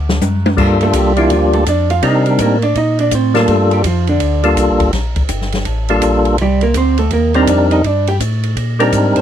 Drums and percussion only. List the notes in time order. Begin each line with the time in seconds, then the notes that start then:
0.09 snare
0.21 hi-hat pedal, high tom
0.46 high tom
0.58 kick, crash
0.81 ride
0.93 kick, hi-hat pedal, ride
1.17 ride
1.30 kick, ride
1.53 ride
1.66 kick, hi-hat pedal, ride
1.90 ride
2.02 kick, ride
2.26 ride
2.39 kick, hi-hat pedal, ride
2.62 ride
2.75 kick, ride
2.99 ride
3.11 kick, hi-hat pedal, ride
3.35 snare, ride
3.48 kick, ride
3.71 ride
3.84 kick, hi-hat pedal, ride
4.07 ride
4.20 kick, ride
4.43 ride
4.57 kick, hi-hat pedal, ride
4.80 kick, ride
4.93 kick, snare, ride
5.16 kick, ride
5.29 kick, hi-hat pedal, ride
5.41 snare
5.52 snare, ride
5.65 kick, ride
5.89 ride
6.02 kick, hi-hat pedal, ride
6.25 ride
6.38 kick, ride
6.61 ride
6.74 kick, hi-hat pedal, ride
6.98 ride
7.11 kick, ride
7.34 ride
7.47 kick, hi-hat pedal, ride
7.71 ride
7.84 kick, ride
8.07 ride
8.20 kick, hi-hat pedal, ride
8.43 ride
8.57 kick, ride
8.80 ride
8.92 kick, hi-hat pedal, ride
9.16 ride